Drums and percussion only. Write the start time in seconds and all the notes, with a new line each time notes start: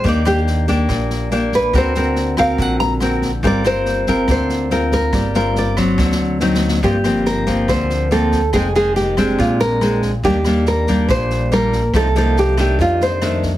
0.04 kick, snare
0.25 cross-stick, snare
0.47 snare
0.68 kick, snare
0.89 kick, cross-stick, snare
1.10 snare
1.31 snare
1.52 kick, snare
1.73 kick, cross-stick, snare
1.95 snare
2.16 snare
2.37 kick, cross-stick, snare
2.58 kick, snare
2.80 snare
3.00 cross-stick, snare
3.22 kick, snare
3.43 kick, snare
3.64 cross-stick, snare
3.86 snare
4.07 kick, snare
4.28 kick, cross-stick, snare
4.49 snare
4.70 snare
4.92 kick, snare
5.13 kick, cross-stick, snare
5.34 snare
5.56 snare
5.77 kick, cross-stick, snare
5.98 kick, snare
6.12 snare
6.40 snare
6.55 snare
6.68 snare
6.83 kick, snare
7.04 cross-stick, snare
7.25 snare
7.47 kick, snare
7.68 kick, cross-stick, snare
7.90 snare
8.11 snare
8.32 kick, snare
8.53 kick, cross-stick, snare
8.75 snare
8.96 snare
9.17 kick, cross-stick, snare
9.38 kick, snare
9.60 snare
9.81 cross-stick, snare
10.02 kick, snare
10.23 kick, snare
10.45 cross-stick, snare
10.66 snare
10.87 kick, snare
11.09 kick, cross-stick, snare
11.30 snare
11.51 snare
11.72 kick, snare
11.94 kick, cross-stick, snare
12.15 snare
12.37 snare
12.57 kick, cross-stick, snare
12.79 kick, snare
13.01 snare
13.22 cross-stick, snare
13.43 kick, snare